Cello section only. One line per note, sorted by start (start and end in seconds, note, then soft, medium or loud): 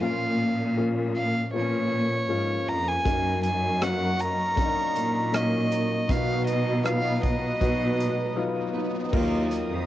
0.02 1.50 A#2 loud
1.54 2.26 A#2 medium
2.29 2.65 G#2 medium
2.67 3.03 F2 medium
3.06 4.72 F#2 medium
4.95 6.05 A#2 medium
6.09 7.57 B2 loud
7.61 8.33 B2 medium
9.13 9.66 D#2 loud
9.70 9.86 F2 medium